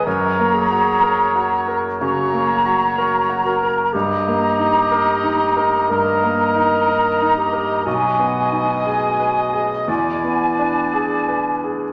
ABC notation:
X:1
M:4/4
L:1/8
Q:1/4=61
K:D#phr
V:1 name="Flute section"
a4 a4 | a4 a4 | g4 g3 z |]
V:2 name="Oboe"
c4 c3 z | d4 d4 | d4 =d3 z |]
V:3 name="Clarinet"
A G2 z F3 A | =G4 A3 G | F3 z E3 z |]
V:4 name="Grand piano"
(3F,, A, F (3A F A (3C, A, F (3A F A | (3=G,, A, D (3A D A (3G,, A, D (3A D A | (3B,,, B, D (3G B G (3E,, B, =D (3G B G |]